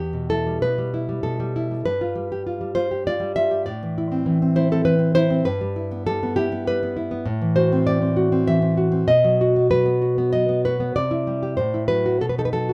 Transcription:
nylon-string guitar
Already playing: E2 G4
0.13 B2
0.30 E4 A4
0.47 G3
0.62 B2 B4
0.78 G3
0.94 E4
1.09 G3
1.23 B2 A4
1.40 G3
1.56 E4
1.71 G3
1.85 G2 B4
2.01 F4
2.16 G3
2.32 G4
2.47 F4
2.61 G3
2.75 F4 C5
2.91 G4
3.07 F4 D5
3.20 G3
3.36 F4 E5
3.51 G4
3.66 A2 D5
3.83 E3
3.98 E4
4.12 C4
4.26 E3
4.42 C4
4.56 E4 C5
4.71 C4 A4
4.85 E3 B4
4.99 C4
5.15 E4 C5
5.30 C4
5.45 G2 B4
5.61 G3
5.76 E4
5.91 B3
6.07 G3 A4
6.23 B3
6.36 E4 G4
6.52 B3
6.67 G3 B4
6.83 B3
6.97 E4
7.11 B3
7.26 A2
7.42 E3
7.56 F#4 C5
7.72 C4
7.87 E3 D5
8.02 C4
8.17 F#4
8.32 C4
8.47 E3 E5
8.62 C4
8.77 F#4
8.92 C4
9.08 B2 D#5
9.24 F#3
9.41 F#4
9.56 B3
9.71 F#3 B4
9.86 B3
10.02 F#4
10.18 B3
10.33 F#3 D#5
10.49 B3
10.65 F#4 B4
10.80 B3
10.96 C3 D5
11.11 E4
11.27 G3
11.43 G4
11.57 A2 C5
11.74 E4
11.88 F#3 B4
12.06 F#4
12.21 B2 A4
12.29 B4
12.38 D#4 A4
12.45 B4
12.53 F#3 A4
12.69 F#4

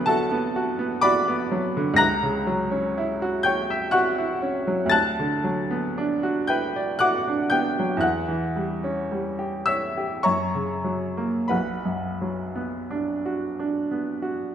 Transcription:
grand piano
Already playing: D2 D3 F#3 B3 B4 F#5 B5
0.06 F#4 A4 A5
0.32 B3
0.56 F#4
0.79 B3
1.01 F#4 D5 B5 D6
1.28 B3
1.51 F#3
1.77 D3
1.94 C#2 F#6 A#6
1.98 A#5
2.23 C#3
2.47 F#3
2.71 C#4
2.98 E4
3.22 F#4
3.43 C#5 G5 G6
3.70 E5
3.91 F#4 F#5 C#6 F#6
4.18 E4
4.42 C#4
4.67 F#3
4.86 D2 A6
4.91 A5 F#6
5.20 D3
5.44 F#3
5.71 B3
5.98 D4
6.23 F#4
6.47 B4 G5 G6
6.76 D5
6.99 F#4 F#5 D6 F#6
7.28 D4
7.50 B3 G5 G6
7.79 F#3
7.97 E2 F#6
8.02 F#5
8.28 E3
8.56 G3
8.84 C#4
9.11 G3
9.39 G4
9.66 C#5 E5 E6
9.97 G4
10.23 F#2 C#5 A#5 C#6
10.55 C#3
10.84 F#3
11.17 A#3
11.48 B1 B4 F#5 B5
11.85 F#2
12.21 F#3
12.55 B3
12.91 D4
13.26 F#4
13.59 D4
13.91 B3
14.22 F#4

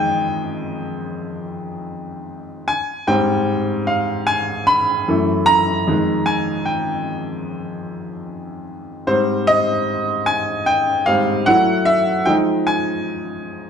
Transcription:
grand piano
Already playing: F2 D#3 G#3 G5 G#5
2.68 G#5
3.07 G#2 G3 C4 G5
3.87 F5
4.27 G#5
4.67 B5
5.08 F#2 E3 A3
5.46 A#5
5.87 F2 D#3 G#3
6.26 G#5
6.66 G5
9.07 G#2 G3 C4 C5
9.47 D#5
10.26 G#5
10.66 G5
11.06 G#2 G3 C4 F5
11.46 F#3 A3 E4 F#5
11.85 E5
12.26 F3 G#3 D#4 G5
12.67 G#5

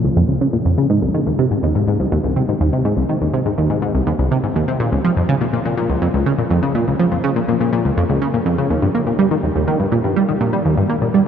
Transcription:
synth arpeggio sound
0.04 C#2
0.17 F2
0.29 C#2
0.41 C#3
0.53 A#2
0.65 F2
0.78 C#3
0.90 G#2
1.02 C2
1.14 D#3
1.26 D#2
1.39 C3
1.51 G#2
1.63 D#2
1.75 G#2
1.88 G#2
2.00 C2
2.12 D#2
2.24 C2
2.36 C3
2.49 G#2
2.61 D#2
2.73 C3
2.85 G#2
2.97 C2
3.09 D#3
3.21 D#2
3.34 C3
3.46 G#2
3.58 D#2
3.70 G#2
3.82 G#2
3.95 C2
4.07 D#2
4.19 C2
4.31 C3
4.43 G#2
4.56 D#2
4.68 C3
4.80 A#2
4.92 C#2
5.04 F3
5.17 F2
5.29 C#3
5.41 A#2
5.53 A#2
5.65 A#2
5.77 A#2
5.90 C#2
6.02 F2
6.14 C#2
6.26 C#3
6.38 A#2
6.50 F2
6.63 C#3
6.75 A#2
6.87 C#2
7.00 F3
7.12 F2
7.24 C#3
7.36 A#2
7.48 A#2
7.60 A#2
7.73 A#2
7.85 C#2
7.97 F2
8.10 C#2
8.22 C#3
8.34 A#2
8.46 F2
8.58 C#3
8.70 D#2
8.82 G2
8.95 A#3
9.07 A#2
9.19 G3
9.31 D#3
9.43 D#2
9.56 D#2
9.68 D#3
9.80 G2
9.92 A#2
10.04 G2
10.16 G3
10.29 D#3
10.41 A#2
10.53 G3
10.65 D#2
10.77 G2
10.90 A#3
11.02 A#2
11.14 G3

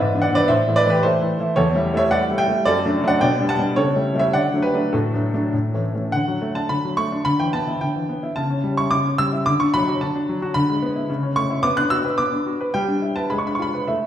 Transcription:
grand piano
Already playing: G#2 B4 E5
0.14 E3 B3 D4
0.22 D5 F#5
0.31 E3 B3 D4 D5
0.36 B4
0.48 A2 C5 E5
0.68 E3 A3 E4
0.76 B4 D5
0.86 E3 A3 E4
0.90 G4 B4
1.03 E3 A3 E4 A4 C5
1.21 E3 A3 E4
1.39 E3 A3 E4
1.56 E2 A4 C#5
1.75 G3 A3 E4
1.93 G3 A3 E4 E5
1.98 C#5
2.11 G3 A3 E4 D5 F#5
2.30 G3 A3 E4
2.38 E5 G5
2.48 G3 A3 E4
2.65 F#2 A4 D5
2.85 F#3 A3 D4
3.03 F#3 A3 D4
3.08 D5 F#5
3.21 B2 D5 G5
3.41 G3 B3 D4
3.49 F#5 A5
3.59 G3 B3 D4
3.76 C#3 A4 C#5
3.96 G3 A3 E4
4.15 G3 A3 E4
4.19 C#5 E5
4.33 D3 D5 F#5
4.53 F#3 A3 D4
4.62 G4 B4
4.74 F#3 A3 D4
4.93 A2 F#4 A4
5.13 F#3 A3 D4
5.34 F#3 A3 D4
5.54 A2
5.74 E3 A3 C#4
5.94 E3 A3 C#4
6.12 D3 F#5
6.28 F#3
6.42 A3
6.55 D4 A5
6.69 D3 B5
6.85 F#3
6.97 A3 C#6
7.12 D4
7.25 D3 B5
7.39 E3 G5
7.53 B3 A5
7.68 E4
7.81 D3 G5
7.96 E3
8.09 B3
8.23 E4
8.36 C#3 A5
8.50 C#4
8.64 G3
8.77 E4 C#6
8.91 C#3 D6
9.06 C#4
9.18 G3 E6
9.33 E4
9.46 D3 D6
9.60 D4 C#6
9.74 F#3 B5
9.88 F#4
10.01 D3 A5
10.16 D4
10.29 F#3
10.42 F#4
10.54 D3 B5
10.69 G#3
10.82 B3
10.96 E4
11.10 C#3
11.23 C#4
11.36 A3 C#6
11.50 E4
11.63 B3 D6
11.77 D4 F#6
11.90 F#4 E6
12.05 B4
12.18 B3 D6
12.33 D4
12.46 F#4
12.61 B4
12.74 G3 G5
12.88 D4
13.02 E4
13.16 B4 A5
13.30 G#3 B5
13.38 C#6
13.45 D4 B5
13.55 C#6
13.59 F4 B5
13.74 B4
13.88 A3 E4 A4 E5

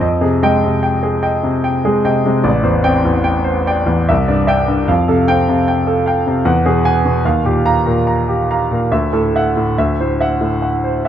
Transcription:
grand piano
0.01 F2 D#5
0.21 C3 G#4
0.43 G#3 D#5 G5
0.64 C3
0.83 G5
1.03 G#4
1.23 D#5 G5
1.43 C3
1.64 G5
1.85 G#3 G#4
2.05 C3 D#5 G5
2.25 C3 G#3
2.44 A1 D5
2.63 E2 C5
2.83 C4 D5 G5
3.05 E2
3.24 G5
3.44 C5
3.67 D5 G5
3.86 E2
4.09 C2 E5
4.28 G2 D5
4.47 D4 E5 G5
4.68 G2
4.88 F2 F5
5.08 C3 A4
5.28 C4 F5 G5
5.48 C3
5.68 G5
5.87 A4
6.06 F5 G5
6.27 C3
6.45 E2 F#5
6.66 B2 G#4
6.85 F#5 G#5
7.05 B2
7.25 D#2 F5
7.45 A#2 G4
7.66 F5 A#5
7.86 A#2
8.07 A#5
8.28 G4
8.51 F5 A#5
8.71 A#2
8.92 D2 E5
9.13 A2 A4
9.36 E5 F#5
9.57 A2
9.78 D2 E5
10.00 A2 C5
10.21 E5 F#5
10.41 A2
10.62 F#5
10.84 C5
11.05 E5

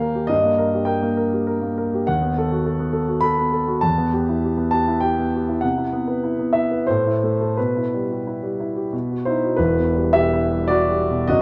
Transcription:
grand piano
Already playing: D#2 A#3 G4 F5 G5 G#5
0.00 A#4
0.15 G4
0.27 G2 D#5
0.44 A#3
0.58 A#4
0.74 G4
0.85 A#4 G5
1.02 A#3
1.17 A#4
1.33 G4
1.47 A#4
1.62 A#3
1.78 A#4
1.94 G4
2.07 D#2 F#5
2.21 B3
2.38 A4
2.51 F#4
2.66 A4
2.79 B3
2.93 A4
3.07 F#4
3.21 A4 B5
3.38 B3
3.53 A4
3.67 F#4
3.81 E2 A5
3.98 B3
4.13 G4
4.29 E4
4.44 G4
4.57 B3
4.71 G4 A5
4.88 E4
5.00 G4 G5
5.19 B3
5.35 G4
5.49 E4
5.61 C3 F#5
5.78 E4
5.93 B3
6.08 B4
6.24 E4
6.39 B3
6.53 E4 E5
6.71 B4
6.87 A2 C5
7.07 E4
7.24 A3
7.41 A4
7.57 B2 B4
7.77 E4
7.94 G3
8.11 G4
8.27 E4
8.43 G3
8.60 E4
8.76 G4
8.93 B2
9.11 F#4
9.25 D#4 E4 C5
9.44 F#4
9.56 E1 E2 E4 B4
9.79 B2
9.95 G3
10.13 B2 G4 E5
10.33 E4
10.51 G3
10.68 E4 F#4 D5
10.90 G3
11.10 B2
11.27 F#1 F#2 F#4 D#5

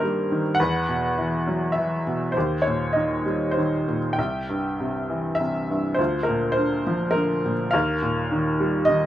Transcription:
upright piano
Already playing: G2 D#3 G3 A#3 G4 C5
0.00 G3 A#4
0.32 D#3
0.55 F#5
0.60 E2 B4
0.89 B2
1.18 E3
1.47 F#3
1.72 E5
1.77 E3
2.07 B2
2.32 C5
2.37 D#2 G4
2.62 C#5
2.67 A#2
2.93 D#3 D#5
3.26 G3
3.51 C5
3.57 D#3
3.88 A#2
4.13 G5
4.18 C2 E5
4.49 G2
4.80 C3
5.09 E3
5.35 E5
5.40 C3
5.70 G2
5.94 C5
5.98 D2 F4
6.23 A#4
6.28 A#2
6.52 C5
6.57 D3
6.87 F3
7.11 D3 A#4
7.45 A#2
7.71 D#2 A#4 F5
8.02 A#2
8.32 D#3
8.60 G3
8.85 D#5
8.89 D#3

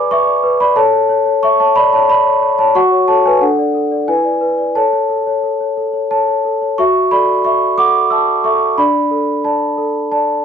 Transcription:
celesta
Already playing: G#4 B4 D5 G#5 B5 D6
0.11 B4 E5 C#6
0.26 D5
0.43 B4
0.60 D5 B5
0.76 A4 C#5 A5
0.93 C#5
1.09 C#5
1.26 C#5
1.43 C#5 E5 C#6
1.60 C#5 A5
1.76 C#5 D5 B5
1.93 C#5 A5
2.09 C#5 D5 B5
2.25 C#5
2.42 C#5
2.59 C#5 A5
2.75 F#4 F#5 C#6
2.92 C#5
3.08 A4 C#5 A5
3.25 B4 C#5 G#5
3.41 D4 A4 F#5
3.59 D5
3.75 A4
3.92 D5
4.08 E4 B4 G#5
4.24 D5
4.41 B4
4.58 D5
4.75 A4 C#5 A5
4.93 C#5
5.09 A4
5.27 C#5
5.43 A4
5.60 C#5
5.77 A4
5.93 C#5
6.11 A4 C#5 A5
6.28 C#5
6.45 A4
6.62 C#5
6.78 F#4 E5 C#6
7.11 A4 D5 B5
7.44 E5 C#6
7.78 A4 F#5 D6
8.10 E5 A5 E6
8.44 A4 E5 C#6
8.78 D4 D5 B5
9.11 A4
9.44 D5 A5
9.78 A4
10.12 D5 A5

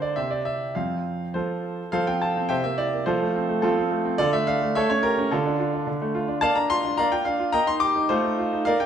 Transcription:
grand piano
Already playing: D3 A#3 C5
0.02 D5
0.16 C3 C4 E5
0.31 D5
0.45 E5
0.75 F2 C4 F5
1.34 F3 F4 A4 C5
1.92 F3 A4 C5 F5
2.07 C4 G5
2.21 F4 A5
2.36 C4
2.49 C3 C5 E5 G5
2.64 A#3 E5
2.78 E4 D5
2.93 A#3
3.06 F3 F4 A4 C5
3.21 A3
3.35 C4
3.49 A3
3.62 F3 C4 F4 A4
3.77 C4
3.91 A3
4.05 C4
4.18 D3 F4 A4 D5
4.33 A3 E5
4.47 D4 F5
4.62 A3
4.75 A3 A4 C#5 E5
4.90 C#4 C#5
5.03 G4 A#4
5.18 C#4
5.31 D3 D4 F4 A4
5.46 D4
5.60 F4
5.73 D4
5.87 D3
6.02 A3
6.15 F4
6.28 D4
6.41 A#3 D5 F5 A5
6.55 D4 A#5
6.70 F4 C6
6.84 D4
6.97 A#3 D5 F5 A#5
7.12 F4 G5
7.25 D4 F5
7.40 F4
7.52 A#3 D#5 G5 A#5
7.67 D#4 C6
7.80 G4 D6
7.96 D#4
8.09 A3 F4 A4 C5
8.24 D#4
8.39 F4
8.53 D#4
8.65 A#3 A#4 D5 F5
8.80 D4 G5

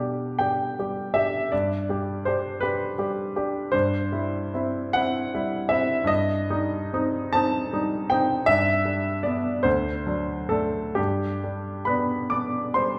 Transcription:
grand piano
Already playing: B2 G3 D4 G4 D5
0.39 D4 G4 G5
0.79 G3 G4
1.14 D4 G4 E5
1.52 G2 D5
1.89 G3 G4
2.25 D4 G4 C5
2.60 D4 G4 B4
2.98 G3 G4
3.36 D4 G4
3.72 G2 C5
4.12 G3 E4
4.54 C4 E4
4.93 C4 E4 F#5
5.34 G3 E4
5.69 C4 E4 E5
6.04 G2 D#5
6.50 G3 D#4
6.93 C4 D#4
7.33 C4 D#4 A5
7.73 G3 D#4
8.10 C4 D#4 G5
8.46 G2 E5
8.85 G3 D4
9.23 B3 D4 D5
9.63 D2 C5
10.07 F#3 D4
10.49 A3 D4 A4
10.95 G2 G4
11.44 G3 D4
11.85 B3 D4 B4 B5
12.30 B3 D4 D5 D6
12.74 G3 D4 C5 C6

